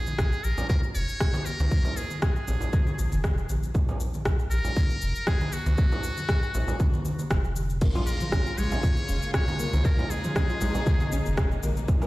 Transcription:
Already playing: A#1 G#4
0.07 high conga, cabasa
0.19 kick, cross-stick, cabasa
0.32 cabasa
0.44 A#1 A#4, cabasa
0.58 low conga, cabasa
0.69 A#4, kick, high conga, cabasa
0.83 cabasa
0.95 F1 C#5, cabasa
1.09 cabasa
1.20 kick, cross-stick, cabasa
1.34 high conga, cabasa
1.46 A#4, cabasa
1.60 C#2, high conga, cabasa
1.71 kick, low conga, cabasa
1.85 low conga, cabasa
1.97 G#4, cabasa
2.11 high conga, cabasa
2.22 G#4, kick, cross-stick, cabasa
2.36 cabasa
2.48 A#1, low conga, cabasa
2.61 low conga, cabasa
2.73 kick, high conga, cabasa
2.87 high conga, cabasa
2.98 A#1, high conga, cabasa
3.12 F1, high conga, cabasa
3.24 kick, cross-stick, cabasa
3.38 cabasa
3.49 A#1, high conga, cabasa
3.63 cabasa
3.74 kick, low conga, cabasa
3.88 low conga, cabasa
4.00 cabasa
4.14 high conga, cabasa
4.25 kick, cross-stick, cabasa
4.39 cabasa
4.51 A#1 A#4, cabasa
4.64 low conga, cabasa
4.76 kick, high conga, cabasa
4.90 cabasa
5.02 F1, cabasa
5.15 cabasa
5.27 G#4, kick, cross-stick, cabasa
5.41 high conga, cabasa
5.52 F#4, cabasa
5.66 C#2, high conga, cabasa
5.78 kick, low conga, cabasa
5.92 low conga, cabasa
6.03 cabasa
6.17 high conga, cabasa
6.29 kick, cross-stick, cabasa
6.43 cabasa
6.54 A#1, low conga, cabasa
6.68 low conga, cabasa
6.80 kick, high conga, cabasa
6.93 high conga, cabasa
7.05 high conga, cabasa
7.19 high conga, cabasa
7.31 F1, kick, cross-stick, cabasa
7.44 F1, cabasa
7.56 high conga, cabasa
7.70 cabasa
7.81 A#1 C#3 G#3 A#3 F4, kick, crash, low conga, cabasa
7.95 F4, low conga, cabasa
8.07 A#4, cabasa
8.21 F3, high conga, cabasa
8.32 C#4, kick, cross-stick, cabasa
8.46 F4, cabasa
8.58 A#1 G#3 C#5, cabasa
8.71 low conga, cabasa
8.83 F4, kick, high conga, cabasa
8.97 cabasa
9.09 F1 C#4, cabasa
9.22 cabasa
9.34 C#4 C#5, kick, cross-stick, cabasa
9.48 high conga, cabasa
9.59 A#3, cabasa
9.73 C#2, high conga, cabasa
9.85 A#3 D#4 A#4, kick, low conga, cabasa
9.98 F4, low conga, cabasa
10.10 G#4, cabasa
10.24 F3, high conga, cabasa
10.36 C#4, kick, cross-stick, cabasa
10.49 F4, cabasa
10.61 A#1 G#3, low conga, cabasa
10.75 low conga, cabasa
10.86 F4, kick, high conga, cabasa
11.00 high conga, cabasa
11.12 A#1 C#4, high conga, cabasa
11.25 F1, high conga, cabasa
11.37 C#4, kick, cross-stick, cabasa
11.51 cabasa
11.63 A#1 A#3, high conga, cabasa
11.77 cabasa
11.88 D#3 F#3 D#4, kick, low conga, cabasa
12.02 A#4, low conga, cabasa

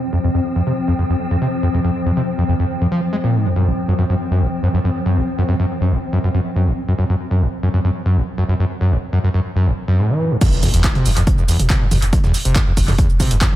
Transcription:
Already playing: F3 C4
0.13 F2
0.24 F2
0.34 F2
0.56 F2
0.67 C3
0.88 F2
0.98 F2
1.09 F2
1.31 F2
1.41 C3
1.63 F2
1.74 F2
1.84 F2
2.06 F2
2.17 C3
2.38 F2
2.48 F2
2.59 F2
2.81 F2
2.91 F3
3.13 G#3
3.24 A#2
3.34 G#2
3.45 F2
3.56 F#2
3.67 F#1
3.88 F#2
3.99 F#2
4.10 F#2
4.31 F#2
4.41 F#1
4.63 F#2
4.74 F#2
4.84 F#2
5.06 F#2
5.17 F#1
5.38 F#2
5.49 F#2
5.60 F#2
5.81 F#2
5.91 F#1
6.13 F#2
6.24 F#2
6.34 F#2
6.56 F#2
6.67 F#1
6.88 F#2
6.98 F#2
7.09 F#2
7.31 F#2
7.41 F#1
7.63 F#2
7.74 F#2
7.84 F#2
8.06 F#2
8.17 F#1
8.38 F#2
8.48 F#2
8.59 F#2
8.81 F#2
8.91 F#1
9.13 F#2
9.24 F#2
9.34 F#2
9.56 F#2
9.67 F#1
9.88 F#2
9.98 A2
10.09 E3
10.31 F#2
10.41 F2, kick, closed hi-hat, tambourine, crash, impact, shaker
10.52 F1, shaker
10.63 F2, mid tom, open hi-hat, tambourine, shaker
10.74 F1 E2, closed hi-hat, shaker
10.84 kick, snare, clap, closed hi-hat, tambourine, shaker
10.95 C3, closed hi-hat, mid tom
11.06 F1 F2, open hi-hat, tambourine, shaker
11.17 F1 F2, snare, closed hi-hat, shaker
11.27 kick, closed hi-hat, mid tom, tambourine, shaker
11.38 F1 F2, shaker
11.48 E2, open hi-hat, tambourine, shaker
11.59 F1, closed hi-hat, mid tom, shaker
11.70 C3, kick, snare, clap, closed hi-hat, tambourine, shaker
11.81 F2
11.91 F1 F2, mid tom, open hi-hat, tambourine, shaker
12.02 F1, closed hi-hat, shaker
12.13 F2, kick, closed hi-hat, tambourine, shaker
12.24 F1 E2, snare, mid tom, shaker
12.34 open hi-hat, tambourine, shaker
12.45 F1 C3, closed hi-hat, shaker
12.56 F2, kick, snare, clap, closed hi-hat, mid tom, tambourine, shaker
12.67 F2
12.77 F1, kick, open hi-hat, tambourine, shaker
12.88 F1 F2, mid tom, open hi-hat, shaker
12.98 E2, kick, closed hi-hat, tambourine, shaker
13.09 F1, shaker
13.20 C3, kick, mid tom, open hi-hat, tambourine, shaker
13.31 F1 F2, closed hi-hat, shaker
13.41 F2, kick, snare, clap, closed hi-hat, tambourine, shaker
13.52 mid tom

